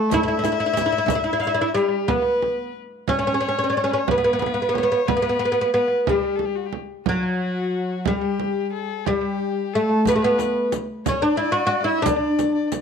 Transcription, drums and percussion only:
0.11 riq, frame drum
0.44 riq, frame drum
0.77 riq, frame drum
1.08 riq, frame drum
1.43 riq
1.77 riq
2.08 frame drum
2.42 frame drum
3.08 frame drum
4.08 frame drum
4.42 frame drum
4.75 frame drum
5.09 frame drum
6.07 frame drum
6.39 frame drum
6.73 frame drum
7.06 frame drum
8.05 frame drum
8.40 frame drum
9.06 frame drum
10.05 riq, frame drum
10.39 riq, frame drum
10.72 riq, frame drum
11.06 riq, frame drum
12.06 riq, frame drum
12.39 riq, frame drum
12.72 riq, frame drum

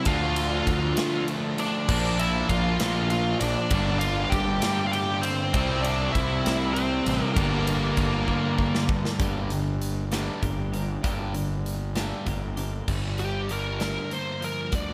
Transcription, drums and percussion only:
0.05 kick, ride
0.36 ride
0.67 kick, ride
0.97 snare, ride
1.28 ride
1.58 ride
1.89 kick, crash
2.19 ride
2.49 kick, ride
2.80 snare, ride
3.10 ride
3.41 ride
3.70 kick, ride
4.01 ride
4.32 kick, ride
4.62 snare, ride
4.93 ride
5.23 ride
5.54 kick, ride
5.84 ride
6.15 kick, ride
6.46 snare, ride
6.76 ride
7.06 ride
7.36 kick, ride
7.67 ride
7.97 kick, ride
8.28 kick
8.59 kick
8.75 snare
8.89 kick
9.05 snare
9.20 kick, closed hi-hat
9.50 closed hi-hat
9.82 closed hi-hat
10.12 snare, closed hi-hat
10.43 kick, closed hi-hat
10.74 closed hi-hat
11.04 kick, closed hi-hat
11.34 closed hi-hat
11.66 closed hi-hat
11.96 snare, closed hi-hat
12.26 kick, closed hi-hat
12.57 closed hi-hat
12.88 kick, crash
13.18 closed hi-hat
13.49 closed hi-hat
13.80 snare, closed hi-hat
14.11 closed hi-hat
14.42 closed hi-hat
14.72 kick, closed hi-hat

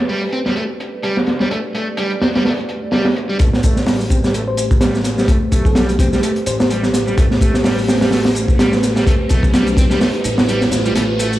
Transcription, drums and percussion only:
0.09 open hi-hat
0.32 closed hi-hat
0.46 snare
0.56 closed hi-hat
0.80 closed hi-hat
1.03 closed hi-hat
1.17 snare
1.26 snare, closed hi-hat
1.40 snare
1.51 closed hi-hat
1.75 closed hi-hat
1.97 closed hi-hat
2.10 closed hi-hat
2.22 snare, open hi-hat
2.35 snare, open hi-hat
2.44 snare, open hi-hat
2.58 closed hi-hat
2.69 closed hi-hat
2.92 snare, open hi-hat
3.05 snare, open hi-hat
3.16 closed hi-hat
3.39 kick, closed hi-hat, shaker
3.53 snare
3.63 kick, closed hi-hat, shaker
3.76 snare, shaker
3.86 snare, open hi-hat, shaker
4.01 shaker
4.10 kick, closed hi-hat, shaker
4.24 snare, shaker
4.34 closed hi-hat, shaker
4.57 closed hi-hat, shaker
4.71 kick, shaker
4.81 snare, closed hi-hat, shaker
4.95 snare, shaker
5.04 snare, closed hi-hat, shaker
5.18 snare, shaker
5.28 kick, closed hi-hat, shaker
5.52 kick, closed hi-hat, shaker
5.65 kick, shaker
5.75 snare, closed hi-hat, shaker
5.89 closed hi-hat, shaker
5.99 kick, closed hi-hat, shaker
6.13 snare, shaker
6.23 closed hi-hat, shaker
6.36 closed hi-hat
6.46 closed hi-hat, shaker
6.60 snare, shaker
6.70 closed hi-hat, shaker
6.83 snare, shaker
6.94 snare, closed hi-hat, shaker
7.08 shaker
7.18 kick, closed hi-hat, shaker
7.31 snare
7.41 kick, closed hi-hat, shaker
7.54 snare, shaker
7.64 snare, open hi-hat, shaker
7.79 shaker
7.88 snare, open hi-hat, shaker
8.01 snare, open hi-hat, shaker
8.11 snare, open hi-hat, shaker
8.25 snare, open hi-hat
8.35 closed hi-hat, shaker
8.48 kick, shaker
8.59 snare, closed hi-hat, shaker
8.73 snare, shaker
8.83 snare, closed hi-hat, shaker
8.96 snare, shaker
9.07 kick, closed hi-hat, shaker
9.29 kick, closed hi-hat, shaker
9.43 kick, shaker
9.54 snare, closed hi-hat, shaker
9.67 closed hi-hat, shaker
9.77 kick, closed hi-hat, shaker
9.90 snare, shaker
10.01 snare, open hi-hat, shaker
10.14 closed hi-hat
10.24 closed hi-hat, shaker
10.38 snare, shaker
10.49 closed hi-hat, shaker
10.62 snare, shaker
10.72 snare, closed hi-hat, shaker
10.86 shaker
10.95 snare, closed hi-hat, shaker
11.19 closed hi-hat, shaker
11.33 shaker

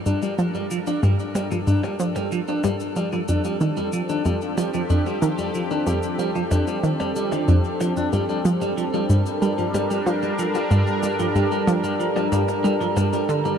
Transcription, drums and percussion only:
0.06 cabasa
0.22 cabasa
0.38 cabasa
0.55 cabasa
0.71 cabasa
0.87 cabasa
1.03 cabasa
1.19 cabasa
1.35 percussion blips, cabasa
1.51 cabasa
1.67 cabasa
1.83 percussion blips, cabasa
2.00 cabasa
2.16 percussion blips, cabasa
2.32 cabasa
2.48 cabasa
2.64 percussion blips, cabasa
2.80 cabasa
2.96 cabasa
3.12 cabasa
3.28 cabasa
3.44 cabasa
3.61 cabasa
3.77 cabasa
3.93 cabasa
4.09 cabasa
4.25 cabasa
4.41 cabasa
4.58 percussion blips, cabasa
4.74 cabasa
4.90 cabasa
5.06 cabasa
5.22 cabasa
5.38 cabasa
5.54 cabasa
5.71 cabasa
5.87 cabasa
6.03 cabasa
6.19 cabasa
6.35 cabasa
6.51 percussion blips, cabasa
6.67 cabasa
6.84 cabasa
7.00 percussion blips, cabasa
7.16 cabasa
7.32 percussion blips, cabasa
7.48 cabasa
7.64 cabasa
7.81 percussion blips, cabasa
7.97 cabasa
8.13 cabasa
8.29 cabasa
8.45 cabasa
8.61 cabasa
8.78 cabasa
8.94 cabasa
9.10 cabasa
9.26 cabasa
9.42 cabasa
9.58 cabasa
9.74 percussion blips, cabasa
9.91 cabasa
10.07 cabasa
10.22 cabasa
10.39 cabasa
10.55 cabasa
10.71 cabasa
10.87 cabasa
11.03 cabasa
11.19 cabasa
11.36 cabasa
11.52 cabasa
11.68 percussion blips, cabasa
11.84 cabasa
12.00 cabasa
12.16 percussion blips, cabasa
12.32 cabasa
12.48 percussion blips, cabasa
12.65 cabasa
12.81 cabasa
12.97 percussion blips, cabasa
13.13 cabasa
13.29 cabasa
13.45 cabasa

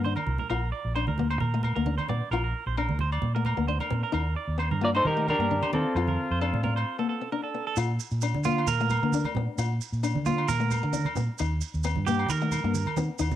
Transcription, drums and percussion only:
0.04 high conga
0.16 high conga, low agogo
0.27 low conga
0.38 low conga
0.50 low agogo
0.96 low agogo
1.07 high conga
1.18 low conga
1.31 low agogo
1.40 high conga, low conga
1.63 low conga, low agogo
1.86 high conga
1.98 high conga, low agogo
2.09 low conga
2.32 low agogo
2.77 low agogo
2.89 high conga
2.99 low conga
3.12 low agogo
3.22 high conga, low conga
3.45 low conga, low agogo
3.69 high conga
3.80 high conga, low agogo
3.91 low conga
4.14 low agogo
4.60 low agogo
4.71 high conga
4.95 low agogo
5.05 high conga, low conga
5.28 low conga, low agogo
5.50 high conga
5.62 high conga, low agogo
5.73 low conga
5.96 low agogo
6.08 high conga
6.42 low agogo
6.54 high conga
6.64 low conga
6.77 low agogo
7.76 low agogo, maracas
8.00 maracas
8.11 maracas
8.21 low agogo, maracas
8.34 high conga
8.44 low conga, maracas
8.58 low agogo
8.67 high conga, low conga, maracas
8.80 maracas
8.90 low conga, low agogo, maracas
9.12 high conga, maracas
9.24 high conga, low agogo
9.35 low conga
9.58 low agogo, maracas
9.81 maracas
9.93 maracas
10.04 low agogo, maracas
10.15 high conga
10.26 low conga, maracas
10.38 low agogo
10.48 high conga, low conga, maracas
10.60 maracas
10.71 low conga, low agogo, maracas
10.93 high conga, maracas
11.05 high conga, low agogo
11.16 low conga, maracas
11.38 low agogo, maracas
11.61 maracas
11.74 maracas
11.84 low agogo, maracas
11.96 high conga
12.06 low conga, maracas
12.19 low agogo
12.29 high conga, low conga, maracas
12.41 maracas
12.51 low conga, low agogo, maracas
12.74 high conga, maracas
12.86 high conga, low agogo
12.97 low conga, maracas
13.19 low agogo, maracas
13.31 high conga, maracas

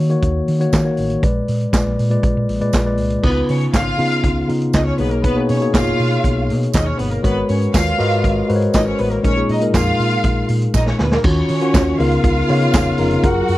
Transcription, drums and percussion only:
0.10 closed hi-hat
0.22 kick, closed hi-hat
0.48 open hi-hat
0.61 closed hi-hat
0.73 kick, snare, clap, closed hi-hat, tambourine
0.97 open hi-hat
1.10 closed hi-hat
1.23 kick, closed hi-hat
1.48 open hi-hat
1.61 closed hi-hat
1.73 kick, snare, clap, closed hi-hat, tambourine
1.99 open hi-hat
2.11 closed hi-hat
2.23 kick, closed hi-hat
2.49 open hi-hat
2.61 closed hi-hat
2.73 kick, snare, clap, closed hi-hat, tambourine
2.97 open hi-hat
3.10 closed hi-hat
3.23 kick, crash
3.49 open hi-hat
3.61 closed hi-hat
3.73 kick, snare, clap, closed hi-hat, tambourine
4.00 open hi-hat
4.12 closed hi-hat
4.24 kick, closed hi-hat
4.49 open hi-hat
4.62 closed hi-hat
4.73 kick, snare, clap, closed hi-hat, tambourine
4.98 open hi-hat
5.11 closed hi-hat
5.24 kick, closed hi-hat
5.49 open hi-hat
5.62 closed hi-hat
5.74 kick, snare, clap, closed hi-hat, tambourine
6.00 open hi-hat
6.12 closed hi-hat
6.24 kick, closed hi-hat
6.50 open hi-hat
6.63 closed hi-hat
6.73 kick, snare, clap, closed hi-hat, tambourine
6.99 open hi-hat
7.11 closed hi-hat
7.24 kick, closed hi-hat
7.49 open hi-hat
7.61 closed hi-hat
7.74 kick, snare, clap, closed hi-hat, tambourine
8.00 open hi-hat
8.12 closed hi-hat
8.24 kick, closed hi-hat
8.49 open hi-hat
8.62 closed hi-hat
8.74 kick, snare, clap, closed hi-hat, tambourine
8.98 open hi-hat
9.11 closed hi-hat
9.24 kick, closed hi-hat
9.49 open hi-hat
9.61 closed hi-hat
9.74 kick, snare, clap, closed hi-hat, tambourine
10.00 open hi-hat
10.11 closed hi-hat
10.23 kick, closed hi-hat
10.49 open hi-hat
10.62 closed hi-hat
10.74 kick, snare, tambourine
10.87 snare
10.99 snare
11.11 snare
11.24 kick, crash
11.49 open hi-hat
11.61 closed hi-hat
11.74 kick, snare, clap, closed hi-hat, tambourine
12.00 open hi-hat
12.12 closed hi-hat
12.24 kick, closed hi-hat
12.49 open hi-hat
12.62 closed hi-hat
12.74 kick, snare, clap, closed hi-hat, tambourine
12.98 open hi-hat
13.11 closed hi-hat
13.23 kick, closed hi-hat
13.48 open hi-hat

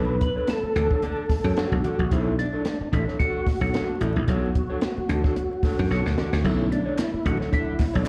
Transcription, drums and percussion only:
0.21 kick, closed hi-hat
0.47 snare, closed hi-hat, muted conga, high conga
0.76 closed hi-hat, muted conga, low conga
0.91 kick
1.02 closed hi-hat, high conga
1.30 kick, snare, open hi-hat, high conga
1.57 snare, closed hi-hat
1.72 kick, high conga
1.84 closed hi-hat, low conga
1.99 kick
2.11 kick, closed hi-hat, muted conga
2.39 closed hi-hat, muted conga
2.65 snare, closed hi-hat, high conga
2.93 kick, closed hi-hat, muted conga, low conga
3.08 snare
3.20 kick, closed hi-hat, high conga
3.47 kick, snare, open hi-hat, muted conga, high conga
3.73 snare, closed hi-hat, muted conga
3.89 high conga
4.01 closed hi-hat, low conga
4.28 kick, closed hi-hat, muted conga
4.55 kick, closed hi-hat
4.81 snare, closed hi-hat, high conga
4.98 high conga
5.09 closed hi-hat, muted conga, low conga
5.24 kick, snare
5.36 closed hi-hat, muted conga, high conga
5.63 kick, snare, open hi-hat, muted conga, high conga
5.91 snare
6.06 snare, high conga
6.18 snare, muted conga, low conga
6.33 snare
6.45 kick, crash
6.72 closed hi-hat, muted conga
6.98 snare, clap, closed hi-hat, high conga
7.26 kick, closed hi-hat, muted conga, low conga
7.41 snare
7.53 kick, closed hi-hat, high conga
7.79 kick, snare, clap, open hi-hat, muted conga, high conga

